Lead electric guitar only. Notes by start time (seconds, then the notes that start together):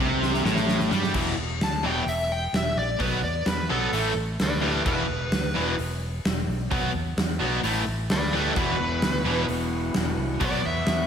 1.63 A5
1.86 G5
2.09 E5
2.32 G5
2.56 E5
2.79 D5
3.01 B4
3.23 D5
3.47 B4
3.71 A4
4.42 B4 D5
4.63 G4 B4
4.88 B4
8.11 B4 D5
8.35 G4 B4
8.58 B4
10.44 D5
10.65 E5